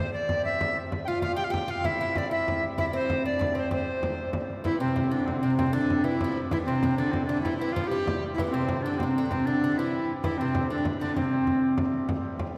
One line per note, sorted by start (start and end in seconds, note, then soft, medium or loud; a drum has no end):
0.00 0.91 C3 medium
0.00 0.91 G3 medium
0.00 0.12 C5 medium
0.13 0.42 D5 medium
0.29 frame drum medium
0.45 0.77 E5 medium
0.61 frame drum medium
0.92 4.63 C3 medium
0.92 4.64 G3 medium
0.92 frame drum medium
1.05 1.21 F4 medium
1.05 1.21 F5 medium
1.05 1.09 G5 medium
1.22 1.36 F4 medium
1.22 1.35 F5 medium
1.22 frame drum medium
1.36 1.43 G4 medium
1.36 1.46 G5 loud
1.36 frame drum soft
1.44 1.53 F5 medium
1.50 1.68 G4 medium
1.50 1.72 G5 medium
1.50 frame drum medium
1.68 1.84 F4 medium
1.68 1.87 F5 medium
1.84 2.00 E4 medium
1.84 2.19 E5 medium
1.84 frame drum medium
2.01 2.16 E4 medium
2.16 2.31 D4 medium
2.16 2.31 D5 medium
2.16 frame drum medium
2.31 2.64 E4 medium
2.31 2.64 E5 medium
2.31 frame drum soft
2.48 frame drum medium
2.78 2.93 E4 medium
2.78 2.85 E5 medium
2.78 frame drum medium
2.93 3.25 C4 medium
2.93 3.23 C5 medium
3.10 frame drum medium
3.25 3.38 D4 medium
3.25 3.54 D5 medium
3.25 frame drum soft
3.39 3.54 D4 medium
3.39 frame drum medium
3.55 3.70 C4 medium
3.55 3.71 C5 medium
3.71 4.29 C4 medium
3.71 4.30 C5 medium
3.71 frame drum medium
4.03 frame drum medium
4.18 frame drum soft
4.33 frame drum medium
4.49 frame drum soft
4.64 8.36 C3 medium
4.64 4.80 E3 medium
4.64 8.36 G3 medium
4.64 4.79 E4 medium
4.64 frame drum medium
4.80 4.95 C3 medium
4.80 5.13 C4 medium
4.96 5.12 C3 medium
4.96 frame drum medium
5.11 5.43 D3 medium
5.11 5.28 D4 medium
5.11 frame drum soft
5.26 5.40 C4 medium
5.26 frame drum medium
5.40 5.58 C3 medium
5.40 5.56 C4 medium
5.57 5.74 C3 medium
5.57 5.75 C4 medium
5.57 frame drum medium
5.73 6.04 D3 medium
5.73 6.06 D4 medium
5.90 frame drum medium
6.04 6.24 E3 medium
6.04 6.39 E4 medium
6.04 frame drum soft
6.21 6.39 F3 medium
6.21 frame drum medium
6.51 6.68 E3 medium
6.51 6.58 E4 loud
6.51 frame drum loud
6.65 6.82 C3 medium
6.65 6.95 C4 medium
6.82 6.99 C3 medium
6.82 frame drum medium
6.97 7.28 D3 medium
6.97 7.13 D4 medium
6.97 frame drum soft
7.11 7.25 C4 medium
7.11 frame drum medium
7.25 7.45 D3 medium
7.25 7.41 D4 medium
7.42 7.56 E4 medium
7.42 frame drum medium
7.46 7.60 E3 medium
7.57 7.74 E4 loud
7.57 frame drum soft
7.61 7.75 E3 medium
7.73 7.92 F3 medium
7.73 7.89 F4 medium
7.73 frame drum medium
7.87 8.24 G4 medium
7.91 8.24 G3 medium
8.07 frame drum loud
8.34 12.09 C3 medium
8.34 12.09 G3 medium
8.34 8.40 E4 loud
8.34 frame drum medium
8.39 8.54 E3 medium
8.51 8.85 C3 medium
8.51 8.84 C4 medium
8.68 frame drum medium
8.82 9.01 D3 medium
8.82 9.00 D4 medium
8.82 frame drum soft
8.98 9.27 C4 medium
8.98 frame drum medium
9.03 9.17 C3 medium
9.18 9.31 D3 medium
9.28 9.47 C3 medium
9.28 9.47 C4 medium
9.28 frame drum medium
9.46 9.61 D3 medium
9.46 9.79 D4 loud
9.64 9.78 D3 medium
9.77 10.10 E3 medium
9.77 10.12 E4 medium
9.77 frame drum soft
10.23 10.40 E3 medium
10.23 10.40 E4 loud
10.23 frame drum loud
10.38 10.72 C3 medium
10.38 10.69 C4 medium
10.55 frame drum loud
10.70 10.84 D3 medium
10.70 10.85 D4 medium
10.70 frame drum soft
10.85 frame drum medium
11.00 11.17 D3 medium
11.00 11.15 D4 medium
11.16 11.74 C3 medium
11.16 11.74 C4 medium
11.16 frame drum medium
11.32 frame drum soft
11.47 frame drum medium
11.63 frame drum soft
11.78 frame drum medium
11.93 frame drum soft
12.09 12.58 C3 medium
12.09 12.58 G3 medium
12.09 frame drum loud
12.39 frame drum medium